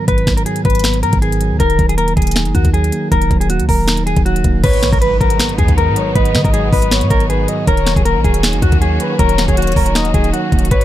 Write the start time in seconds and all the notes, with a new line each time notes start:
Already playing: G#2 D#3 F#3 B3
0.07 G#1 G#2 B4, kick, closed hi-hat
0.18 closed hi-hat
0.27 G#1 D#3, finger snap, kick, snare, closed hi-hat
0.37 A#4, closed hi-hat
0.46 F#3 G#4, closed hi-hat
0.56 closed hi-hat
0.65 G#1 B4, kick, closed hi-hat
0.70 closed hi-hat
0.75 closed hi-hat
0.79 closed hi-hat
0.84 B3, finger snap, snare, closed hi-hat
0.94 closed hi-hat
1.03 G#2 A#4, closed hi-hat
1.13 G#1, kick, closed hi-hat
1.22 D#3 G#4, closed hi-hat
1.32 closed hi-hat
1.41 F#3, closed hi-hat
1.51 D#2
1.60 D#1 D#3 A#4, kick, closed hi-hat
1.70 closed hi-hat
1.78 D#1 F#3, kick, closed hi-hat
1.89 G#4, closed hi-hat
1.98 A#3 A#4, closed hi-hat
2.08 closed hi-hat
2.17 D#1 G#4, kick, closed hi-hat
2.22 closed hi-hat
2.27 closed hi-hat
2.31 closed hi-hat
2.36 D#4, finger snap, snare, closed hi-hat
2.45 F#1, closed hi-hat
2.54 D#2 D#3 F#4, kick, closed hi-hat
2.65 kick, closed hi-hat
2.74 F#3 G#4, closed hi-hat
2.84 closed hi-hat
2.92 A#3, closed hi-hat
3.12 D#1 D#3 A#4, kick, closed hi-hat
3.22 closed hi-hat
3.31 D#1 F#3, kick, closed hi-hat
3.41 G#4, closed hi-hat
3.49 A#3 F#4, closed hi-hat
3.60 D#2, closed hi-hat
3.69 D#1 A#4, kick, open hi-hat
3.88 D#4, finger snap, snare, closed hi-hat
3.97 closed hi-hat
4.06 D#3 G#4, closed hi-hat
4.16 D#1, kick, closed hi-hat
4.25 F#3 F#4, closed hi-hat
4.36 closed hi-hat
4.44 D#1 A#3, kick, closed hi-hat
4.63 G#1 G#2 G#3 B3 D#4 F#4 B4 C#5, kick, closed hi-hat, crash, impact
4.73 closed hi-hat
4.83 B1 D#3, finger snap, snare, closed hi-hat
4.93 G#1 A#4, kick, closed hi-hat
5.01 F#3 B4, closed hi-hat
5.21 G#1 A#4, kick, closed hi-hat
5.30 closed hi-hat
5.39 B3, finger snap, snare, closed hi-hat
5.49 closed hi-hat
5.58 D#2 G#2 G#4, kick, closed hi-hat
5.68 kick, closed hi-hat
5.77 D#3 A#4, closed hi-hat
5.88 G#2
5.96 F#3 C#5, closed hi-hat
6.15 G#1 G#2 B4 D#5, kick, closed hi-hat
6.25 closed hi-hat
6.35 D#3, finger snap, snare, closed hi-hat
6.45 G#1 A#4, kick, closed hi-hat
6.53 F#3 G#4, closed hi-hat
6.73 G#1 B4, kick, open hi-hat
6.82 closed hi-hat
6.91 B3 C#5, finger snap, snare, closed hi-hat
7.01 G#2, closed hi-hat
7.10 G#1 G#2 A#4, kick, closed hi-hat
7.20 closed hi-hat
7.29 D#3 G#4 B4, closed hi-hat
7.48 F#3 D#5, closed hi-hat
7.67 D#1 D#3 A#3 C#4 A#4 C#5, kick, closed hi-hat
7.77 closed hi-hat
7.86 F#3, finger snap, snare, closed hi-hat
7.96 D#1 G#4, kick, closed hi-hat
8.05 A#3 A#4, closed hi-hat
8.15 A#1
8.24 D#1 G#4, kick, closed hi-hat
8.34 closed hi-hat
8.43 D#4, finger snap, snare, closed hi-hat
8.53 F#1, closed hi-hat
8.61 D#2 D#3 F#4, kick, closed hi-hat
8.72 kick, closed hi-hat
8.81 F#3 G#4, closed hi-hat
9.00 A#3 B4, closed hi-hat
9.19 D#1 D#3 A#4 C#5, kick, closed hi-hat
9.29 closed hi-hat
9.38 F#3, finger snap, snare, closed hi-hat
9.48 D#1 G#4, kick, closed hi-hat
9.57 A#3 F#4, closed hi-hat
9.62 closed hi-hat
9.67 closed hi-hat
9.72 closed hi-hat
9.76 D#1 A#4, kick, open hi-hat
9.86 closed hi-hat
9.95 D#4 D#5, finger snap, snare, closed hi-hat
10.05 closed hi-hat
10.13 D#1 D#3 G#4, kick, closed hi-hat
10.24 closed hi-hat
10.33 F#3 F#4, closed hi-hat
10.52 D#1 A#3, kick, closed hi-hat
10.59 closed hi-hat
10.65 closed hi-hat
10.71 G#1 G#2 G#3 B3 D#4 B4 C#5, kick, closed hi-hat
10.81 closed hi-hat